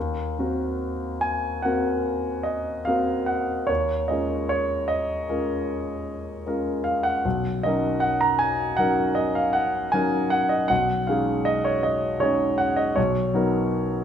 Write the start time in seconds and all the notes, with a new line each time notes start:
Already playing: D#2
0.39 A#3 C4 F#4 A#4
1.21 G#5
1.62 A#3 C4 F#4 A#4 F#5
2.43 D#5
2.85 A#3 C4 F#4 A#4 F5
3.26 F#5
3.67 D#2 C#5
4.08 G#3 C#4 F4 A#4 D#5
4.49 C#5
4.88 D#5
5.29 G#3 C#4 F4 A#4
6.46 G#3 C#4 F4 A#4
6.84 F5
7.03 F#5
7.25 B1
7.63 F#3 C#4 D#4 A#4 D#5
8.00 F#5
8.21 A#5
8.39 G#5
8.77 F#3 C#4 D#4 A#4 F#5
9.15 D#5
9.35 F5
9.53 F#5
9.92 F#3 C#4 D#4 A#4 G#5
10.30 F#5
10.49 D#5
10.68 B1 F#5
11.07 G#3 C#4 D#4 G#4 F5
11.45 D#5
11.65 C#5
11.83 D#5
12.20 G#3 C#4 D#4 G#4 C#5
12.58 F#5
12.76 D#5
12.96 B1 C#5
13.34 F#3 B3 D#4 A#4